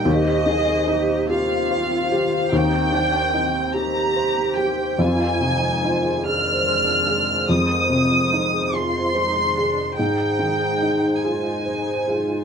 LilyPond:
<<
  \new Staff \with { instrumentName = "Violin section" } { \time 6/8 \key f \dorian \tempo 4. = 48 ees''4. f''4. | g''4. bes''4 g''8 | aes''4. f'''4. | ees'''4. c'''4. |
g''4. aes''4. | }
  \new Staff \with { instrumentName = "Harp" } { \time 6/8 \key f \dorian <c' ees'''>8. c'16 g'8 c'16 g'8 c'8 c''16 | c'16 g'8 c'16 g'8 c'16 g'8 c'8 c''16 | f'16 c''8 f'16 c''16 aes'16 f'16 c''16 aes'16 f'8 f''16 | f'16 c''8 f'16 c''16 aes'16 f'16 c''16 aes'16 f'8 ees''16 |
aes'16 ees''8 aes'16 ees''16 c''16 aes'16 ees''16 c''16 aes'8 aes''16 | }
  \new Staff \with { instrumentName = "Felt piano" } { \time 6/8 \key f \dorian ees,8 ees8 ees'8 g'8 c''8 g'8 | ees,8 ees8 ees'8 g'8 c''8 g'8 | f,8 c8 ees'8 aes'8 c''8 aes'8 | f,8 c8 ees'8 aes'8 c''8 aes'8 |
aes,8 ees8 ees'8 aes'8 c''8 aes'8 | }
  \new Staff \with { instrumentName = "Cello" } { \time 6/8 \key f \dorian g'8 aes'8 g'8 f'4. | ees'8 d'8 c'8 g'4. | f'8 ees'8 f'8 d'4. | c'4. f'8 ees'8 d'8 |
ees'4. f'8 ees'8 f'8 | }
  \new Staff \with { instrumentName = "Ambient pad" } { \time 6/8 \key f \dorian <ees c' c''>2.~ | <ees c' c''>2. | <ees aes c''>2.~ | <ees aes c''>2. |
<aes ees' c''>2. | }
>>